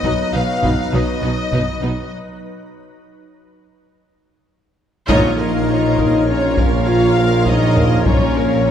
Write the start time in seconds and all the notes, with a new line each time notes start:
Already playing: F#3 B3 D#4 B4 D#5
0.03 B1 B2 F#3 D#4 B4, taiko
0.33 B1 B2 F#3 D#4 B4 F5
0.63 B1 B2 F#3 D#4 B4, taiko
0.93 B1 B2 F#3 D#4 B4 D#5
1.22 B1 B2 F#3 D#4 B4
1.52 B1 B2 F#3 D#4 B4, taiko
1.82 B1 B2 F#3 D#4 B4
5.09 A#1 A#2 F3 D#4 F4 A#4 C#5 D#5 A#5, taiko
5.39 A#4 F5
5.69 F4 C#5 A#5
5.98 A#4 F5, taiko
6.28 C#4 F4 C#5 A#5
6.57 A#4 F5, taiko
6.87 F4 C#5 F5 A#5
7.16 A#4 F5
7.45 D#4 F4 C#5 D#5 A#5, taiko
7.76 A#4 F5, taiko low
8.03 A#1 A#2 F3 C#4 F4 A#4 C#5 A#5, taiko
8.35 A#4 F5
8.65 F4 C#5 A#5